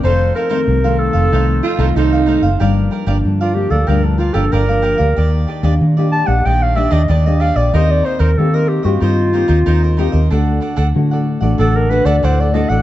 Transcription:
<<
  \new Staff \with { instrumentName = "Cavaquinho" } { \time 4/4 \key f \mixolydian \tempo 4 = 94 <ees' a' c'' f''>8 <ees' a' c'' f''>16 <ees' a' c'' f''>16 r16 <a' c'' f''>8 <a' c'' f''>16 <ees' a' c'' f''>8 <ees' a' c'' f''>16 <ees' a' c'' f''>16 <ees' a' c'' f''>16 <a' c'' f''>16 <ees' a' c'' f''>16 <a' c'' f''>16 | \key g \minor <g' bes' d'' f''>8 <g' bes' d'' f''>16 <g' bes' d'' f''>16 r16 <bes' d'' f''>8 <bes' d'' f''>16 <g' bes' d'' f''>8 <g' bes' d'' f''>16 <g' bes' d'' f''>16 <g' bes' d'' f''>16 <bes' d'' f''>16 <g' bes' d'' f''>16 <bes' d'' f''>16 | <g' d'' ees''>8 <d' g' d'' ees''>16 <d' g' d'' ees''>16 r16 <g' d'' ees''>8 <g' d'' ees''>16 <g' d'' ees''>8 <d' g' d'' ees''>16 <d' g' d'' ees''>16 <d' g' d'' ees''>16 <g' d'' ees''>16 <d' g' d'' ees''>16 <g' d'' ees''>16 | <ees' bes' c'' ees''>8 <ees' bes' c'' ees''>16 <ees' bes' c'' ees''>16 r16 <bes' c'' ees''>8 <bes' c'' ees''>16 <ees' bes' c'' ees''>8 <ees' bes' c'' ees''>16 <ees' bes' c'' ees''>16 <ees' bes' c'' ees''>16 <bes' c'' ees''>16 <ees' bes' c'' ees''>16 <bes' c'' ees''>16 |
<d' a' d'' fis''>8 <d' a' d'' fis''>16 <d' a' d'' fis''>16 r16 <a' d'' fis''>8 <a' d'' fis''>16 <d' a' d'' fis''>8 <d' a' d'' fis''>16 <d' a' d'' fis''>16 <d' a' d'' fis''>16 <a' d'' fis''>16 <d' a' d'' fis''>16 <a' d'' fis''>16 | }
  \new Staff \with { instrumentName = "Clarinet" } { \time 4/4 \key f \mixolydian c''8 bes'4 a'4. r4 | \key g \minor r4 r16 f'16 g'16 a'16 bes'16 d'16 f'16 a'16 bes'4~ | bes'8 r4 a''16 fis''16 g''16 f''16 e''16 ees''16 d''16 ees''16 f''16 d''16 | ees''16 d''16 c''16 bes'16 a'16 bes'16 g'16 fis'16 f'2 |
r2 a'16 bes'16 b'16 d''16 c''16 d''16 ees''16 fis''16 | }
  \new Staff \with { instrumentName = "Tenor saxophone" } { \time 4/4 \key f \mixolydian r2 r8 f'8 ees'4 | \key g \minor r1 | r1 | r1 |
r1 | }
  \new Staff \with { instrumentName = "Nylon-string guitar" } { \time 4/4 \key f \mixolydian << { <ees a c'>8 r16 <ees a c'>8 <ees a c'>8. <ees a c'>8 r16 <ees a c'>8. <ees a c'>16 r16 | \key g \minor <f bes d'>8. <f bes d'>8. <f bes d'>16 r16 <f bes d'>8 r16 <f bes d'>8 <f bes d'>8 <bes g'>16~ | <bes g'>8. <bes d' g'>8 <bes d' g'>8 <bes d' g'>16 <bes d' g'>8 <bes d' g'>8 r16 <bes d' g'>8. | <bes c' g'>4 <bes c' g'>8. <bes c' g'>8. <bes c' g'>4 <bes c' g'>16 r16 |
<a d' fis'>8. r16 <a d' fis'>8 r16 <a d' fis'>8. <a d' fis'>4 <a d' fis'>8 | } \\ { f,4 c4 f,4 c4 | g,4 d4 g,4 d4 | ees4 bes,4 ees4 bes,4 | ees4 ees4 ees4 ees4 |
d4 a,4 d4 a,4 | } >> }
  \new Staff \with { instrumentName = "Fingered electric bass" } { \clef bass \time 4/4 \key f \mixolydian f,,8 r8 c,8. f,,16 c,8 r16 c,16 c,8. ges,,16 | \key g \minor g,,8 r16 g,,16 g,8. d,16 d,8. g,,16 g,,8. d,16 | ees,8 r16 ees,16 ees8. bes,,16 bes,,8. ees,16 ees,8. bes,,16 | ees,8 r16 ees,16 ees8. g,16 g,8. ees,16 ees,8. ees,16 |
d,8 r16 d,16 d8. a,,16 a,,8. d,16 d,8. a,,16 | }
>>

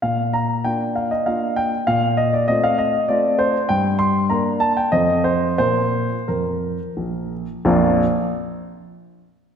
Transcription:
\new Staff \with { instrumentName = "Grand piano" } { \time 3/4 \key bes \major \tempo 4 = 96 << { f''8 bes''8 g''8 f''16 ees''16 f''8 g''8 | f''8 ees''16 d''16 ees''16 f''16 ees''8 d''8 c''8 | g''8 c'''8 bes''8 a''16 g''16 ees''8 c''8 | c''4 bes'4. r8 |
<bes,, f, f bes d' f'>8 r2 r8 | } \\ { bes,4 <bes d' f'>4 <bes d' f'>4 | bes,4 <a c' f'>4 <a c' f'>4 | g,4 <bes d' bes'>4 <f, c' f' a'>4 | <bes, f' bes'>4 f,4 bes,,4 |
r2. | } >> }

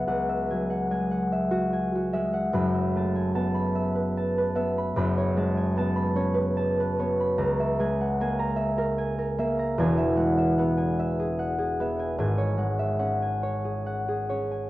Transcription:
<<
  \new Staff \with { instrumentName = "Harp" } { \time 6/8 \key e \major \tempo 4. = 49 <fis' e'' fis'' b''>16 e''16 gis''16 fis''16 gis''16 fis''16 e''16 fis'16 gis''16 fis'16 e''16 fis''16 | b''16 e''16 a''16 gis''16 a''16 b''16 e''16 b'16 a''16 b'16 e''16 b''16 | b''16 cis''16 a''16 gis''16 a''16 b''16 cis''16 b'16 a''16 b'16 cis''16 b''16 | ais''16 e''16 gis''16 fis''16 gis''16 ais''16 e''16 ais'16 gis''16 ais'16 e''16 ais''16 |
gis''16 e''16 fis''16 e''16 fis''16 gis''16 e''16 gis'16 fis''16 gis'16 e''16 gis''16 | gis''16 cis''16 fis''16 e''16 fis''16 gis''16 cis''16 gis'16 fis''16 gis'16 cis''16 gis''16 | }
  \new Staff \with { instrumentName = "Harp" } { \clef bass \time 6/8 \key e \major <cis, fis b>8 fis8 gis4. gis8 | <fis,, fis,>8 a8 b4. b8 | <fis,, fis,>8 gis8 b8 cis'4 b8 | cis,8 gis8 ais4. ais8 |
<e,, e,>8 gis8 b4. b8 | <gis,, gis,>8 gis8 cis'4. cis'8 | }
>>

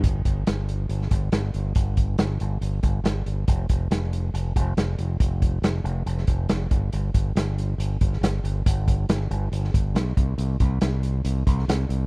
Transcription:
<<
  \new Staff \with { instrumentName = "Fingered electric bass" } { \clef bass \time 4/4 \key f \major \tempo 4 = 139 g,,8 g,,8 g,,4 g,,8 g,,8 g,,8 g,,8 | g,,4 g,,8 g,,8 g,,8 g,,8 g,,8 g,,8 | f,,8 f,,8 f,,4 f,,8 f,,8 f,,8 f,,8 | f,,4 f,,8 f,,8 f,,8 f,,8 f,,8 g,,8 |
g,,8 g,,8 g,,4 g,,8 g,,8 g,,8 g,,8 | g,,4 g,,8 g,,8 g,,8 g,,8 b,,8 c,8 | c,8 c,8 c,4 c,8 c,8 c,8 c,8 | }
  \new DrumStaff \with { instrumentName = "Drums" } \drummode { \time 4/4 <hh bd>8 <hh bd>8 <hh sn>8 hh8 hh16 sn16 <hh bd>8 <hh sn>8 hh8 | <hh bd>8 <hh bd>8 <hh sn>8 hh8 hh8 <hh bd>8 <hh sn>8 hh8 | <hh bd>8 <hh bd>8 <hh sn>8 hh8 hh8 <hh bd>8 <hh sn>8 hh8 | <hh bd>8 <hh bd>8 <hh sn>8 hh8 hh16 sn16 <hh bd>8 <hh sn>8 <hh bd>8 |
hh8 <hh bd>8 <hh sn>8 hh8 hh8 <hh bd>16 sn16 <hh sn>8 hh8 | <hh bd>8 <hh bd>8 <hh sn>8 hh8 hh16 sn16 <hh bd>8 <hh sn>8 <hh bd>8 | hh8 <hh bd>8 <hh sn>8 hh8 hh8 <hh bd>16 sn16 <hh sn>8 hh8 | }
>>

